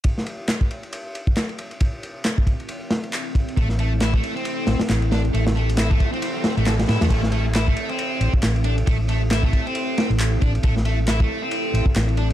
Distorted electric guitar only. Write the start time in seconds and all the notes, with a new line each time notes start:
3.57 A3
3.80 A3
4.01 E4
4.14 A3
4.36 C4
5.12 D4
5.34 A3
5.56 A3
5.78 E4
5.91 A3
6.13 C4
6.57 A3
6.66 A4
6.89 E4
7.02 A3
7.10 A3
7.33 A3
7.55 E4
7.67 A3
7.89 C4
8.65 D4
8.87 A3
9.09 A3
9.31 E4
9.44 A3
9.66 C4
10.41 D4
10.63 A3
10.85 A3
11.08 E4
11.20 A3
11.42 C4
12.18 D4